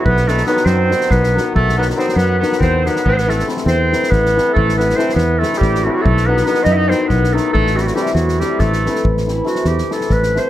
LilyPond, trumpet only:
\new Staff \with { instrumentName = "Trumpet" } { \time 7/8 \tempo 4 = 140 b8 a8 b8 c'4 b4 | a8 b8 c'16. c'32 b8 b8 c'8 b8 | b32 c'32 b16 a8 r8 c'4 b4 | a8 b8 c'8 b8 a8 g8 fis32 g32 fis16 |
a8 b8 b8 dis'32 e'32 dis'16 c'8 b8 a8 | a8 fis32 g32 fis16 g8 fis8 g8 a4 | r2. r8 | }